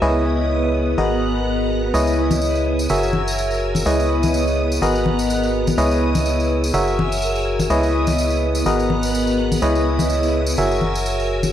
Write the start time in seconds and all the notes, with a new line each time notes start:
0.02 C#2 B3 E4 G#4 B4 C#5 D#5 D#6
0.98 G#1 F#4 G#4 A#4 B4 D#5 A#5 F#6
1.94 C#2 E4 G#4 B4 C#5 D#5 D#6, tambourine
2.07 tambourine
2.31 tambourine, high conga
2.42 tambourine
2.55 tambourine
2.79 tambourine
2.89 F#1 F#4 G#4 A#4 C#5 E5 G#5 E6, tambourine
3.03 tambourine
3.13 high conga
3.28 tambourine
3.38 tambourine
3.51 tambourine
3.75 tambourine, high conga
3.86 C#2 B3 E4 G#4 B4 C#5 D#5 D#6, tambourine
4.00 tambourine
4.23 tambourine, high conga
4.34 tambourine
4.48 tambourine
4.72 tambourine
4.82 G#1 F#4 G#4 A#4 B4 D#5 A#5 F#6, tambourine
4.95 tambourine
5.06 high conga
5.19 tambourine
5.30 tambourine
5.44 tambourine
5.67 tambourine, high conga
5.78 C#2 E4 G#4 B4 C#5 D#5 D#6, tambourine
5.91 tambourine
6.15 tambourine, high conga
6.26 tambourine
6.40 tambourine
6.64 tambourine
6.74 F#1 F#4 G#4 A#4 C#5 E5 G#5 E6, tambourine
6.88 tambourine
6.99 high conga
7.12 tambourine
7.22 tambourine
7.35 tambourine
7.59 tambourine, high conga
7.70 C#2 B3 E4 G#4 B4 C#5 D#5 D#6, tambourine
7.83 tambourine
8.07 tambourine, high conga
8.18 tambourine
8.30 tambourine
8.55 tambourine
8.66 G#1 F#4 G#4 A#4 B4 D#5 A#5 F#6, tambourine
8.79 tambourine
8.90 high conga
9.03 tambourine
9.14 tambourine
9.27 tambourine
9.52 tambourine, high conga
9.62 C#2 E4 G#4 B4 C#5 D#5 D#6, tambourine
9.75 tambourine
9.99 tambourine, high conga
10.10 tambourine
10.23 tambourine
10.46 tambourine
10.57 F#1 F#4 G#4 A#4 C#5 E5 G#5 E6, tambourine
10.71 tambourine
10.81 high conga
10.95 tambourine
11.06 tambourine
11.20 tambourine
11.43 tambourine, high conga